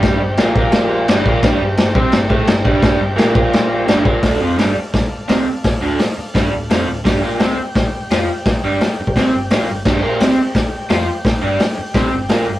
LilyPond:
<<
  \new Staff \with { instrumentName = "Transistor combo organ" } { \time 4/4 \key g \dorian \tempo 4 = 171 << { r1 | r1 | r2 r8 f''8 g''8 a''8 | r1 |
r1 | r1 | r1 | r1 |
r2. d''4 | } \\ { <g' d'' g''>1 | <g' d'' g''>1~ | <g' d'' g''>1 | <a' d'' f''>1~ |
<a' d'' f''>1 | <g' d'' g''>1~ | <g' d'' g''>1 | <g' d'' g''>1~ |
<g' d'' g''>1 | } >> }
  \new Staff \with { instrumentName = "Overdriven electric guitar" } { \clef bass \time 4/4 \key g \dorian <g, g>8 g,8 <bes, bes>8 <bes, bes>4. <g, g>8 <bes, bes>8 | <g, g>8 g,8 g,8 <c c'>8 g,8 <a, a>8 g,8 <g, g>8~ | <g, g>8 g,8 <bes, bes>8 <bes, bes>4. <g, g>8 <bes, bes>8 | <d, d>8 <f, f>8 <g, g>8 r4. <c c'>8 r8 |
r8 <d, d>8 r4 <g, g>8 d,8 <f, f>8 d,8 | <g, g>8 <bes, bes>8 <c c'>8 r4. <f f'>8 r8 | r8 <g, g>8 r4 <c c'>8 g,8 <bes, bes>8 g,8 | <g, g>8 <bes, bes>8 <c c'>8 r4. <f f'>8 r8 |
r8 <g, g>8 r4 <c c'>8 g,8 <bes, bes>8 g,8 | }
  \new Staff \with { instrumentName = "Picked electric bass" } { \clef bass \time 4/4 \key g \dorian g,,8 g,,8 bes,,8 bes,,4. g,,8 bes,,8 | g,,8 g,,8 g,,8 c,8 g,,8 a,,8 g,,8 g,,8~ | g,,8 g,,8 bes,,8 bes,,4. g,,8 bes,,8 | d,,8 f,,8 g,,8 r4. c,8 r8 |
r8 d,,8 r4 g,,8 d,,8 f,,8 d,,8 | g,,8 bes,,8 c,8 r4. f,8 r8 | r8 g,,8 r4 c,8 g,,8 bes,,8 g,,8 | g,,8 bes,,8 c,8 r4. f,8 r8 |
r8 g,,8 r4 c,8 g,,8 bes,,8 g,,8 | }
  \new DrumStaff \with { instrumentName = "Drums" } \drummode { \time 4/4 <cymc bd sn>4 <cymc sn>8 bd8 <cymc sn>4 <cymc sn>8 bd8 | <cymc bd sn>4 <cymc sn>8 bd8 <cymc sn>8 bd8 <cymc sn>8 bd8 | <cymc bd sn>4 <cymc sn>8 bd8 <cymc sn>4 <cymc sn>8 bd8 | <hho bd sn>4 <hho sn>4 <hho bd sn>4 <hho sn>4 |
<hho bd sn>4 <hho sn>4 <hho bd sn>4 <hho sn>4 | <hho bd sn>4 <hho sn>4 <hho bd sn>4 <hho sn>4 | <hho bd sn>4 <hho sn>8. bd16 <hho bd sn>4 <hho sn>4 | <cymc bd sn>4 <hho sn>4 <hho bd sn>4 <hho sn>4 |
<hho bd sn>4 <hho sn>4 <hho bd sn>4 <hho sn>4 | }
>>